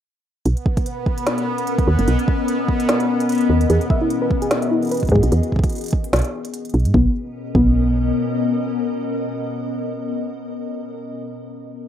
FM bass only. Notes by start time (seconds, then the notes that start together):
0.46 B1
1.87 D#2
1.99 F#1
2.08 B1
3.50 D#2
3.70 E2
5.12 G#2
5.23 B1
5.32 E2
6.13 B1
6.74 B1
6.85 G#2
6.94 B1
7.55 B1